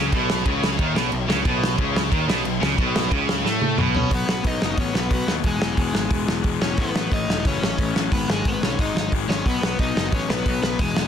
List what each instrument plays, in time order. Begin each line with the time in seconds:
Already playing: picked electric bass C#2, overdriven electric guitar C#3
0.12 picked electric bass B1, overdriven electric guitar B2, kick, crash
0.30 snare
0.45 picked electric bass C#2, overdriven electric guitar C#3, kick, crash
0.64 snare
0.78 picked electric bass D#2, overdriven electric guitar D#3, kick, crash
0.95 picked electric bass B1, overdriven electric guitar B2, snare
1.12 picked electric bass B1, overdriven electric guitar B2, crash
1.28 picked electric bass C#2, overdriven electric guitar C#3, snare
1.45 picked electric bass B1, overdriven electric guitar B2, kick, crash
1.64 snare
1.78 picked electric bass C#2, overdriven electric guitar C#3, kick, crash
1.96 snare
2.11 picked electric bass D#2, overdriven electric guitar D#3, kick, crash
2.28 picked electric bass B1, overdriven electric guitar B2, snare
2.44 picked electric bass B1, overdriven electric guitar B2, crash
2.60 picked electric bass C#2, overdriven electric guitar C#3, snare
2.77 picked electric bass B1, overdriven electric guitar B2, kick, crash
2.96 snare
3.11 picked electric bass C#2, overdriven electric guitar C#3, kick, crash
3.29 snare
3.44 picked electric bass A2, overdriven electric guitar A3, snare
3.61 high tom
3.77 picked electric bass B1, overdriven electric guitar B2, mid tom
3.95 overdriven electric guitar C#4 C#5, floor tom
4.10 picked electric bass B1, overdriven electric guitar B2 F#3 B3, kick, open hi-hat
4.15 overdriven electric guitar B4
4.27 picked electric bass B1, overdriven electric guitar B2 F#3 B3, snare
4.43 picked electric bass B1, overdriven electric guitar B2 F#3 B3 D#4, kick, open hi-hat
4.47 overdriven electric guitar D#5
4.59 picked electric bass F#1, overdriven electric guitar B2 F#3 B3, snare
4.76 picked electric bass A1, overdriven electric guitar B2 F#3 B3 C#4, kick, open hi-hat
4.80 overdriven electric guitar C#5
4.93 picked electric bass B1, overdriven electric guitar B2 F#3 B3 B4, snare
5.09 picked electric bass B1, overdriven electric guitar B2 F#3 B3, kick, open hi-hat
5.26 picked electric bass D#2, overdriven electric guitar B2 F#3 B3 B4, snare
5.43 picked electric bass E1, overdriven electric guitar E2 B2 E3 G#3, kick, open hi-hat
5.47 overdriven electric guitar G#4
5.60 picked electric bass E1, overdriven electric guitar E2 B2 E3, snare
5.76 picked electric bass E1, overdriven electric guitar E2 B2 E3, kick, open hi-hat
5.93 picked electric bass G#1, overdriven electric guitar E2 B2 E3, snare
6.09 picked electric bass E1, overdriven electric guitar E2 B2 E3, kick, open hi-hat
6.26 picked electric bass E1, overdriven electric guitar E2 B2 E3, snare
6.43 picked electric bass E1, overdriven electric guitar E2 B2 E3, kick, open hi-hat
6.61 picked electric bass E1, overdriven electric guitar E2 B2 E3 C#4 C#5, snare
6.77 picked electric bass A1, overdriven electric guitar A2 E3 A3 B3 B4, kick, open hi-hat
6.95 picked electric bass A1, overdriven electric guitar A2 E3 A3, snare
7.11 picked electric bass A1, overdriven electric guitar A2 E3 A3 D#4 D#5, kick, open hi-hat
7.28 picked electric bass E1, overdriven electric guitar A2 E3 A3, snare
7.45 picked electric bass F#1, overdriven electric guitar A2 E3 A3 C#4 C#5, kick, open hi-hat
7.61 picked electric bass A1, overdriven electric guitar A2 E3 A3, snare
7.78 picked electric bass A1, overdriven electric guitar A2 E3 A3, kick, open hi-hat
7.94 picked electric bass A1, overdriven electric guitar A2 E3 A3, snare
8.11 picked electric bass G#1, overdriven electric guitar G#2 D#3 G#3 B3 B4, kick, open hi-hat
8.28 picked electric bass G#1, overdriven electric guitar G#2 D#3 G#3 G#4, snare
8.45 picked electric bass G#1, overdriven electric guitar G#2 D#3 G#3 B3 B4, kick, open hi-hat
8.61 picked electric bass B1, overdriven electric guitar G#2 D#3 G#3 C#4 C#5, snare
8.79 picked electric bass G#1, overdriven electric guitar G#2 D#3 G#3 D#4 D#5, kick, open hi-hat
8.95 picked electric bass G#1, overdriven electric guitar G#2 D#3 G#3, snare
9.12 picked electric bass G#1, overdriven electric guitar G#2 D#3 G#3, kick, open hi-hat
9.28 picked electric bass G#1, overdriven electric guitar G#2 D#3 G#3 C#4 C#5, snare
9.46 picked electric bass B1, overdriven electric guitar B2 F#3 B3 B4, kick, open hi-hat
9.61 picked electric bass B1, overdriven electric guitar B2 F#3 B3, snare
9.79 picked electric bass B1, overdriven electric guitar B2 F#3 B3 D#4 D#5, kick, open hi-hat
9.95 picked electric bass F#1, overdriven electric guitar B2 F#3 B3, snare
10.12 picked electric bass A1, overdriven electric guitar B2 F#3 B3 C#4 C#5, kick, open hi-hat
10.28 picked electric bass B1, overdriven electric guitar B2 F#3 B3 B4, snare
10.45 picked electric bass B1, overdriven electric guitar B2 F#3 B3, kick, open hi-hat
10.62 picked electric bass B1, overdriven electric guitar B2 F#3 B3 B4, snare
10.78 picked electric bass E1, overdriven electric guitar E2 B2 E3 G#3 G#4, kick, open hi-hat
10.95 picked electric bass E1, overdriven electric guitar E2 B2 E3, snare